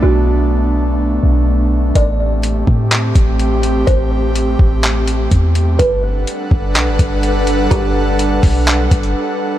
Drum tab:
HH |----------------|x---x---x-x-x-x-|x---x---x-x-x-x-|x---x---x-x-x-x-|
CP |----------------|--------x-------|--------x-------|--------x-------|
BD |----------------|o-----o---o-----|o-----o-----o---|o-----o---o-----|

HH |x---x-o-x-xx----|
CP |--------x-------|
BD |o-----o---o-----|